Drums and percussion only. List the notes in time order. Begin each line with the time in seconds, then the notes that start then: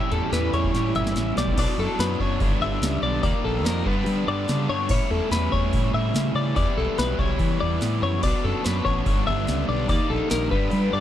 0.12 closed hi-hat
0.33 snare, closed hi-hat
0.54 closed hi-hat
0.64 kick
0.75 snare, closed hi-hat
0.95 closed hi-hat, mid tom
1.07 snare
1.16 snare, closed hi-hat
1.37 snare, closed hi-hat
1.47 kick
1.58 kick, open hi-hat, crash
1.99 snare, open hi-hat
2.20 kick
2.40 kick, open hi-hat
2.82 snare, open hi-hat
3.23 kick, open hi-hat
3.65 snare, open hi-hat
3.86 kick
4.06 open hi-hat
4.48 snare, open hi-hat
4.89 kick, crash
5.31 snare, open hi-hat
5.52 kick
5.73 kick, open hi-hat
6.15 snare, open hi-hat
6.56 kick, open hi-hat
6.98 snare, open hi-hat
7.19 kick
7.39 kick, open hi-hat
7.81 snare, open hi-hat
8.23 kick, crash
8.65 snare, open hi-hat
8.85 kick
9.06 kick, open hi-hat
9.47 snare, open hi-hat
9.89 kick, open hi-hat
10.30 snare, open hi-hat
10.51 kick
10.71 open hi-hat